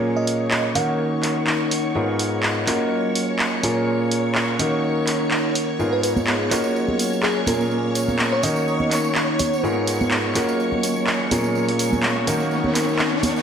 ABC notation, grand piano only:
X:1
M:4/4
L:1/8
Q:"Swing 16ths" 1/4=125
K:D#m
V:1 name="Grand piano"
[A,,A,CEGA]3 [D,A,CDFA]4- [D,A,CDFA] | [G,,B,DEGA]3 [A,CEFA]4 [A,,A,CEGA]- | [A,,A,CEGA]3 [D,A,CDFA]4- [D,A,CDFA] | [G,,B,DEGA]3 [A,CEFA]4 [A,,A,CEGA]- |
[A,,A,CEGA]3 [D,A,CDFA]4- [D,A,CDFA] | [G,,B,DEGA]3 [A,CEFA]4 [A,,A,CEGA]- | [A,,A,CEGA]3 [D,A,CDFA]4- [D,A,CDFA] |]